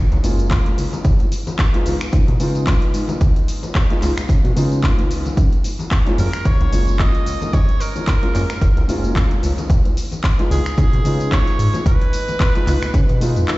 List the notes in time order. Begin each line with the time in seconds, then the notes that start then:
0.12 C#2, closed hi-hat, tambourine, high conga
0.23 F#1 G#3 A#3 C#4 F4, open hi-hat, tambourine, high bongo, low conga
0.38 closed hi-hat, tambourine
0.40 tambourine
0.51 kick, clap, closed hi-hat, tambourine, high conga
0.66 closed hi-hat, tambourine, low conga
0.78 C#2, open hi-hat, tambourine, high bongo
0.92 closed hi-hat, tambourine, high conga
1.05 C#2, kick, closed hi-hat, tambourine
1.19 closed hi-hat, tambourine, high bongo
1.32 open hi-hat, tambourine
1.46 closed hi-hat, tambourine, high conga
1.59 kick, clap, closed hi-hat, tambourine
1.73 G#3 B3 D#4 F4, closed hi-hat, tambourine, high bongo
1.86 C#2 G#3 B3 D#4 F4, open hi-hat, tambourine, high conga
2.01 finger snap, closed hi-hat, tambourine
2.12 C#3, kick, closed hi-hat, tambourine, high bongo
2.13 tambourine
2.27 B2, closed hi-hat, tambourine, high conga
2.39 C#3 G#3 B3 D#4 F4, open hi-hat, tambourine
2.55 closed hi-hat, tambourine
2.66 kick, clap, closed hi-hat, tambourine, high bongo, high conga
2.82 closed hi-hat, tambourine
2.94 G#2, open hi-hat, tambourine
3.08 closed hi-hat, tambourine, high bongo, high conga, low conga
3.20 C#2, kick, closed hi-hat, tambourine
3.36 closed hi-hat, tambourine
3.48 open hi-hat, tambourine
3.63 closed hi-hat, tambourine, high bongo, high conga
3.75 kick, clap, closed hi-hat, tambourine
3.90 G#3 B3 D#4 F4, closed hi-hat, tambourine
4.02 C#2 G#3 B3 D#4 F4, clap, open hi-hat, tambourine, high bongo
4.17 finger snap, tambourine, low conga
4.29 C#3, kick, closed hi-hat, tambourine
4.45 B2, closed hi-hat, tambourine, high conga
4.55 C#3 G#3 B3 D#4 F4, open hi-hat, tambourine, high bongo, low conga
4.71 closed hi-hat, tambourine
4.72 tambourine
4.83 kick, clap, closed hi-hat, tambourine, high conga
4.84 tambourine
4.98 C#2, closed hi-hat, tambourine, high bongo, low conga
5.11 open hi-hat, tambourine
5.25 closed hi-hat, tambourine, high conga
5.37 F#2, kick, closed hi-hat, tambourine
5.51 closed hi-hat, tambourine
5.64 open hi-hat, tambourine, high bongo
5.79 closed hi-hat, tambourine, high conga
5.91 kick, clap, closed hi-hat, tambourine
6.06 G#3 A#3 C#4 F4, closed hi-hat, tambourine, high bongo
6.18 F#2 G#3 A#3 C#4 F4 A#4, open hi-hat, tambourine, high conga
6.33 finger snap, closed hi-hat, tambourine
6.45 F#1 C#5, kick, closed hi-hat, tambourine
6.60 C#2, closed hi-hat, tambourine, high bongo, high conga
6.71 F#1 G#3 A#3 C#4 F4, open hi-hat, tambourine
6.87 closed hi-hat, tambourine
6.99 D#5, kick, clap, closed hi-hat, tambourine, high bongo, high conga
7.15 closed hi-hat, tambourine
7.26 C#2, open hi-hat, tambourine
7.41 closed hi-hat, tambourine, high conga, low conga
7.53 F#2 C#5, kick, closed hi-hat, tambourine, high bongo
7.68 closed hi-hat, tambourine
7.80 A#4, open hi-hat, tambourine
7.95 closed hi-hat, tambourine, high bongo, high conga
8.07 kick, clap, closed hi-hat, tambourine
8.22 G#3 A#3 C#4 F4, closed hi-hat, tambourine
8.34 F#2 G#3 A#3 C#4 F4, clap, open hi-hat, tambourine
8.50 finger snap, closed hi-hat, tambourine, high bongo, low conga
8.61 F#1, kick, closed hi-hat, tambourine
8.77 C#2, closed hi-hat, tambourine, high conga
8.88 F#1 G#3 A#3 C#4 F4, open hi-hat, tambourine, high bongo, low conga
9.03 closed hi-hat, tambourine
9.16 kick, clap, closed hi-hat, tambourine, high conga
9.31 closed hi-hat, tambourine, low conga
9.42 C#2, open hi-hat, tambourine, high bongo
9.58 closed hi-hat, tambourine, high conga
9.70 C#2, kick, closed hi-hat, tambourine
9.85 closed hi-hat, tambourine, high bongo
9.97 open hi-hat, tambourine
10.12 closed hi-hat, tambourine, high conga
10.23 kick, clap, closed hi-hat, tambourine
10.38 G#3 B3 D#4 F4, closed hi-hat, tambourine, high bongo
10.51 C#2 G#3 B3 D#4 F4 G#4, open hi-hat, tambourine, high conga
10.66 finger snap, closed hi-hat, tambourine
10.77 C#3 G#4, kick, closed hi-hat, tambourine, high bongo
10.93 B2, closed hi-hat, tambourine, high conga
11.04 C#3 G#3 B3 D#4 F4, open hi-hat, tambourine
11.20 closed hi-hat, tambourine
11.32 C#5, kick, clap, closed hi-hat, tambourine, high bongo, high conga
11.47 closed hi-hat, tambourine
11.59 G#2, open hi-hat, tambourine
11.74 closed hi-hat, tambourine, high bongo, high conga, low conga
11.86 C#2 B4, kick, closed hi-hat, tambourine
12.01 closed hi-hat, tambourine
12.13 open hi-hat, tambourine
12.28 closed hi-hat, tambourine, high bongo, high conga
12.40 kick, clap, closed hi-hat, tambourine
12.55 G#3 B3 D#4 F4, closed hi-hat, tambourine
12.66 C#2 G#3 B3 D#4 F4, clap, open hi-hat, tambourine, high bongo
12.82 finger snap, closed hi-hat, tambourine, low conga
12.94 C#3, kick, closed hi-hat, tambourine
13.09 B2, closed hi-hat, tambourine, high conga
13.20 G#3 B3 D#4 F4, open hi-hat, tambourine, high bongo, low conga
13.36 F2, closed hi-hat, tambourine
13.48 clap, closed hi-hat, tambourine, high conga